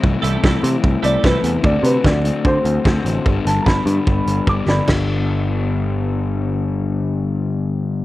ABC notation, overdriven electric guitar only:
X:1
M:4/4
L:1/8
Q:1/4=148
K:G
V:1 name="Overdriven electric guitar"
[C,E,A,CE] [A,CE] [E,A,CE] [A,CE]3 [C,E,A,CE] [A,CE] | [D,A,CF] [A,CF] [D,A,CF] [A,CF]3 [D,A,CF] [A,CF] | [G,,D,G,B,D] [G,B,D] [D,G,B,D] [G,B,D]3 [G,,D,G,B,D] [G,B,D] | [G,,D,G,B,D]8- |
[G,,D,G,B,D]8 |]